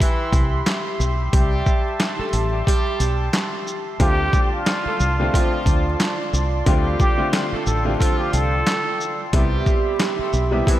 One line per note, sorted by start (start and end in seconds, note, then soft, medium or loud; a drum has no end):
0.00 0.63 E3 loud
0.00 0.63 E4 loud
0.00 3.96 G4 medium
0.00 3.96 E5 medium
0.00 1.30 B5 medium
0.00 3.96 C6 medium
0.00 kick medium
0.00 closed hi-hat loud
0.33 0.61 C2 loud
0.33 kick loud
0.33 closed hi-hat medium
0.33 shaker medium
0.67 snare loud
0.67 clap medium
0.67 closed hi-hat medium
1.00 1.28 B1 medium
1.00 shaker medium
1.33 1.61 C2 loud
1.33 1.96 G3 loud
1.33 1.96 G4 loud
1.33 3.98 A5 medium
1.33 kick loud
1.33 closed hi-hat loud
1.66 kick loud
1.66 shaker soft
2.00 snare loud
2.00 clap medium
2.00 closed hi-hat medium
2.19 2.30 A3 medium
2.19 2.30 A4 medium
2.19 muted fingered electric bass stroke medium
2.33 2.61 A1 medium
2.33 closed hi-hat medium
2.33 shaker medium
2.52 2.63 G3 medium
2.52 2.63 G4 medium
2.66 3.29 G3 loud
2.66 3.29 G4 loud
2.66 kick medium
2.66 closed hi-hat loud
3.00 3.28 B1 medium
3.00 closed hi-hat medium
3.00 shaker medium
3.33 snare loud
3.33 clap medium
3.33 closed hi-hat medium
3.67 shaker medium
3.99 4.28 D2 loud
3.99 5.08 D3 medium
3.99 4.62 G3 loud
3.99 5.08 A3 medium
3.99 5.08 C4 medium
3.99 9.30 F4 medium
3.99 5.09 F4 loud
3.99 4.62 G4 loud
3.99 4.49 G4 loud
3.99 9.30 D5 medium
3.99 6.64 A5 medium
3.99 10.80 C6 medium
3.99 kick loud
3.99 closed hi-hat medium
4.33 kick loud
4.33 shaker soft
4.52 5.48 F4 medium
4.66 snare loud
4.66 clap medium
4.66 closed hi-hat medium
4.86 4.97 A3 medium
4.86 4.97 A4 loud
4.86 muted fingered electric bass stroke soft
5.00 5.28 C2 medium
5.00 shaker medium
5.19 5.31 D3 medium
5.19 5.31 G3 medium
5.19 5.32 A3 medium
5.19 5.32 C4 medium
5.19 5.33 F4 loud
5.19 5.31 G4 medium
5.33 6.57 D3 medium
5.33 5.96 F3 loud
5.33 6.57 A3 medium
5.33 6.58 C4 medium
5.33 5.96 F4 loud
5.33 6.58 F4 loud
5.33 kick medium
5.33 closed hi-hat loud
5.66 5.94 D2 loud
5.66 kick loud
5.66 closed hi-hat medium
5.66 shaker medium
6.00 snare loud
6.00 clap medium
6.00 closed hi-hat medium
6.33 6.61 C2 medium
6.33 shaker medium
6.66 6.94 D2 loud
6.66 7.14 D3 loud
6.66 7.29 G3 loud
6.66 7.14 A3 medium
6.66 7.14 C4 medium
6.66 7.15 F4 loud
6.66 7.29 G4 loud
6.66 9.30 G5 medium
6.66 kick loud
6.66 closed hi-hat medium
7.00 7.30 G4 medium
7.00 kick loud
7.00 shaker soft
7.17 7.79 D3 loud
7.17 7.79 A3 medium
7.17 7.79 C4 medium
7.17 7.79 F4 loud
7.33 snare loud
7.33 clap medium
7.33 closed hi-hat medium
7.52 7.64 A3 medium
7.52 7.64 A4 medium
7.52 muted fingered electric bass stroke soft
7.66 7.94 A1 medium
7.66 7.84 A4 medium
7.66 shaker medium
7.85 9.22 D3 loud
7.85 7.98 G3 medium
7.85 9.23 A3 medium
7.85 9.23 C4 medium
7.85 9.23 F4 loud
7.85 7.98 G4 medium
7.99 8.62 F3 loud
7.99 8.62 F4 loud
7.99 8.17 A4 medium
7.99 kick medium
7.99 closed hi-hat loud
8.19 8.32 G4 medium
8.33 8.61 C2 medium
8.33 9.29 A4 medium
8.33 closed hi-hat medium
8.33 shaker medium
8.67 snare loud
8.67 clap medium
8.67 closed hi-hat medium
9.01 shaker medium
9.33 9.61 C2 loud
9.33 10.42 C3 medium
9.33 10.42 G3 medium
9.33 9.97 G3 loud
9.33 10.42 B3 medium
9.33 10.42 E4 loud
9.33 10.80 G4 medium
9.33 9.97 G4 loud
9.33 10.80 E5 medium
9.33 10.80 B5 medium
9.33 kick loud
9.33 closed hi-hat medium
9.66 kick loud
9.66 shaker soft
10.00 snare loud
10.00 clap medium
10.00 closed hi-hat medium
10.19 10.32 A3 medium
10.19 10.32 A4 medium
10.19 muted fingered electric bass stroke soft
10.33 10.61 B1 medium
10.33 shaker medium
10.51 10.64 C3 medium
10.51 10.65 G3 medium
10.51 10.64 G3 medium
10.51 10.65 B3 medium
10.51 10.66 E4 loud
10.51 10.64 G4 medium
10.66 10.80 C3 medium
10.66 10.80 E3 loud
10.66 10.80 G3 medium
10.66 10.80 B3 medium
10.66 10.80 E4 loud
10.66 kick medium
10.66 closed hi-hat loud